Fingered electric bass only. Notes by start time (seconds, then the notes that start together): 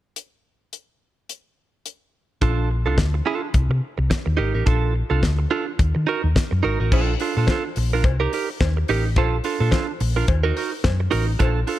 2.42 A#1
2.86 C2
2.98 D2
3.55 C2
3.69 C3
3.98 C2
4.26 D#2
4.39 G#1
4.55 A1
4.67 A#1
5.11 C2
5.23 D2
5.80 D#2
5.96 D#3
6.24 D#2
6.52 F#2
6.64 G#1
6.80 A1
6.92 A#1
7.37 A#2
7.77 A#1
8.04 C2
8.61 D#2
8.89 A1
9.17 A#1
9.60 A#2
10.01 A#1
10.29 D#2
10.85 F#2
11.13 A1
11.41 A#1